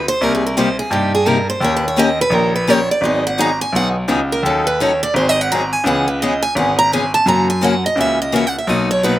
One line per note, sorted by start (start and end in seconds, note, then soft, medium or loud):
0.08 0.23 C5 loud
0.21 0.77 C2 medium
0.21 0.42 C3 medium
0.21 0.42 G3 medium
0.21 0.42 A#3 medium
0.21 0.42 D#4 medium
0.21 0.42 G4 medium
0.21 0.33 A#4 medium
0.35 0.45 G#4 medium
0.46 0.57 A#4 medium
0.57 0.67 C3 medium
0.57 0.67 G3 loud
0.57 0.67 A#3 loud
0.57 0.68 D#4 loud
0.57 0.68 G4 loud
0.57 0.77 C5 medium
0.79 0.91 G#4 medium
0.90 1.47 G2 medium
0.90 1.12 C3 medium
0.90 1.12 G3 medium
0.90 1.12 A#3 medium
0.90 1.12 D#4 medium
0.90 1.12 G4 medium
0.90 1.13 G4 medium
1.15 1.28 G#4 medium
1.26 1.37 C3 medium
1.26 1.37 G3 medium
1.26 1.37 A#3 medium
1.26 1.37 D#4 loud
1.26 1.37 G4 medium
1.26 1.48 A#4 medium
1.50 1.62 C5 medium
1.60 2.17 D#2 medium
1.60 1.82 D#3 medium
1.60 1.82 A#3 medium
1.60 1.83 C#4 medium
1.60 1.83 G4 medium
1.60 1.83 A#4 medium
1.60 1.74 C#5 medium
1.76 1.86 B4 medium
1.88 1.98 C#5 medium
1.96 2.07 D#3 medium
1.96 2.08 A#3 loud
1.96 2.08 C#4 loud
1.96 2.08 G4 loud
1.96 2.08 A#4 loud
1.96 2.19 D#5 loud
2.21 2.34 B4 loud
2.30 2.87 A#1 medium
2.30 2.52 D#3 medium
2.30 2.52 A#3 medium
2.30 2.52 C#4 medium
2.30 2.53 G4 medium
2.30 2.53 A#4 medium
2.34 2.54 A#4 medium
2.56 2.70 B4 medium
2.67 2.78 D#3 medium
2.67 2.78 A#3 medium
2.67 2.79 C#4 medium
2.67 2.79 G4 loud
2.67 2.79 A#4 loud
2.67 2.89 C#5 loud
2.91 3.03 D5 loud
3.01 3.58 G#1 medium
3.01 3.23 D#3 medium
3.01 3.24 F#3 medium
3.01 3.24 B3 medium
3.01 3.24 D#4 medium
3.01 3.24 G#4 medium
3.05 3.25 D#5 medium
3.27 3.39 F#5 medium
3.38 3.49 D#3 medium
3.38 3.49 F#3 medium
3.38 3.49 B3 medium
3.38 3.49 D#4 loud
3.38 3.49 G#4 loud
3.38 3.60 A#5 loud
3.61 3.73 G#5 loud
3.72 4.03 B1 medium
3.72 3.95 D#3 medium
3.72 3.95 F#3 medium
3.72 3.95 B3 medium
3.72 3.95 D#4 medium
3.72 3.95 G#4 medium
3.72 3.88 F#5 medium
4.08 4.38 C#2 medium
4.08 4.19 D#3 medium
4.08 4.19 F#3 medium
4.08 4.19 B3 medium
4.08 4.19 D#4 loud
4.08 4.20 G#4 medium
4.32 4.44 A#4 medium
4.43 4.99 D#2 medium
4.43 4.65 D#3 medium
4.43 4.65 F#3 medium
4.43 4.65 C#4 medium
4.43 4.66 D#4 medium
4.43 4.66 A4 medium
4.67 4.79 B4 medium
4.80 4.90 D#3 loud
4.80 4.91 F#3 medium
4.80 4.91 C#4 medium
4.80 4.91 D#4 loud
4.80 4.91 A4 loud
4.80 5.01 C#5 medium
5.03 5.15 D5 loud
5.14 5.70 G#1 medium
5.14 5.36 D#3 medium
5.14 5.36 F#3 medium
5.14 5.36 C4 medium
5.14 5.36 D#4 medium
5.14 5.36 G#4 medium
5.14 5.29 C5 medium
5.29 5.41 D#5 medium
5.41 5.51 F#5 medium
5.52 5.62 D#3 medium
5.52 5.62 F#3 loud
5.52 5.62 C4 medium
5.52 5.62 D#4 medium
5.52 5.62 G#4 loud
5.52 5.73 A#5 loud
5.73 5.85 G#5 loud
5.84 6.41 C#2 medium
5.84 6.06 C#3 medium
5.84 6.06 E3 medium
5.84 6.06 B3 medium
5.84 6.06 C#4 medium
5.84 6.06 G#4 medium
5.84 6.07 F#5 medium
6.08 6.20 B4 medium
6.22 6.32 C#3 medium
6.22 6.32 E3 medium
6.22 6.32 B3 loud
6.22 6.33 C#4 loud
6.22 6.33 G#4 loud
6.22 6.42 D#5 medium
6.43 6.55 G#5 loud
6.55 7.12 G#1 medium
6.55 6.77 C#3 medium
6.55 6.77 E3 medium
6.55 6.78 B3 medium
6.55 6.78 C#4 medium
6.55 6.78 G#4 medium
6.55 6.77 F#5 medium
6.79 6.91 A#5 loud
6.92 7.02 C#3 medium
6.92 7.03 E3 medium
6.92 7.03 B3 medium
6.92 7.03 C#4 medium
6.92 7.03 G#4 medium
6.92 7.13 G#5 medium
7.14 7.27 A5 loud
7.26 7.82 F#2 medium
7.26 7.47 C#3 medium
7.26 7.47 E3 medium
7.26 7.47 A#3 medium
7.26 7.47 C#4 medium
7.26 7.48 F#4 medium
7.26 7.48 A#5 medium
7.50 7.62 G#5 medium
7.61 7.72 C#3 medium
7.61 7.73 E3 medium
7.61 7.73 A#3 loud
7.61 7.73 C#4 loud
7.61 7.73 F#4 loud
7.61 7.84 F#5 medium
7.86 7.98 D#5 medium
7.95 8.52 C#2 medium
7.95 8.18 C#3 soft
7.95 8.18 E3 medium
7.95 8.18 A#3 medium
7.95 8.18 C#4 medium
7.95 8.18 F#4 medium
8.01 8.20 E5 medium
8.22 8.33 D#5 medium
8.32 8.43 C#3 medium
8.32 8.43 E3 medium
8.32 8.43 A#3 medium
8.32 8.43 C#4 medium
8.32 8.44 F#4 loud
8.32 8.47 E5 medium
8.47 8.57 F#5 medium
8.58 8.69 E5 medium
8.67 9.19 B1 medium
8.67 8.88 B2 medium
8.67 8.88 F#3 medium
8.67 8.89 A#3 medium
8.67 8.89 D#4 medium
8.67 8.89 F#4 medium
8.67 8.89 D#5 medium
8.91 9.03 C#5 medium
9.03 9.14 B2 medium
9.03 9.14 F#3 loud
9.03 9.14 A#3 medium
9.03 9.15 D#4 loud
9.03 9.15 F#4 loud
9.03 9.19 B4 medium